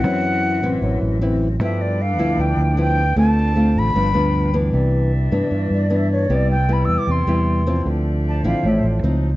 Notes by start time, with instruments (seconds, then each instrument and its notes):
Already playing: flute section C4 F#4 E5, flute F#5
0.04 nylon-string guitar F#2 E3 C4 E4, fingered electric bass F#2
0.62 fingered electric bass A1, nylon-string guitar E3 C4 E4
0.82 fingered electric bass A1, nylon-string guitar F#2
1.01 fingered electric bass A1
1.21 nylon-string guitar E3 C4 E4
1.60 fingered electric bass G2, nylon-string guitar G2 F3 B3 E4, flute section D4 A4 B4 G5, flute E5
1.81 flute D5
2.01 flute F5
2.18 fingered electric bass D2, nylon-string guitar F3 B3 E4
2.37 fingered electric bass D2, nylon-string guitar D3, flute G5
2.57 fingered electric bass D2
2.77 nylon-string guitar F3 B3 E4, flute G5
3.16 fingered electric bass D2, nylon-string guitar D3 A3 C4 F4, flute section D4 C5, flute A5
3.56 nylon-string guitar A3 C4 F4
3.75 fingered electric bass A1, flute B5
3.94 fingered electric bass G1, nylon-string guitar G2 F3 B3 D4, flute section F4 B4 G5
4.14 fingered electric bass D2, nylon-string guitar F3 B3 D4
4.54 nylon-string guitar E3 B3 D4
4.73 fingered electric bass C2, nylon-string guitar C3, flute section D4 D5 E5
5.31 fingered electric bass G2, nylon-string guitar E3 B3 D4
5.51 nylon-string guitar G2, fingered electric bass G2
5.70 fingered electric bass G2, flute D5
5.90 nylon-string guitar E3 B3 D4
5.96 flute E5
6.12 flute C#5
6.29 fingered electric bass C2, nylon-string guitar C3 G3 B3 E4, flute section E4 G5
6.34 flute D5
6.51 flute G5
6.69 nylon-string guitar G3 B3 E4, flute B5
6.85 fingered electric bass E2, flute E6
6.98 flute D6
7.07 fingered electric bass E2, nylon-string guitar C3, flute C6
7.27 fingered electric bass E2, nylon-string guitar G3 B3 E4
7.67 nylon-string guitar F3 C4 E4
7.85 fingered electric bass D2, nylon-string guitar D3, flute section C5 D5 E5
8.28 flute A5
8.43 fingered electric bass A1, nylon-string guitar F3 C4 E4, flute F5
8.63 fingered electric bass A1, nylon-string guitar A2
8.67 flute E5
8.83 fingered electric bass A1
9.02 fingered electric bass C#2, nylon-string guitar F3 C4 D#4, flute section D#4